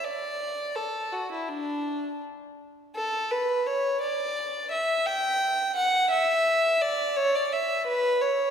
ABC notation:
X:1
M:4/4
L:1/16
Q:1/4=85
K:D
V:1 name="Violin"
d4 A2 F E D4 z4 | A2 B2 c2 d4 e2 g4 | f2 e4 d2 c d e2 B2 c2 |]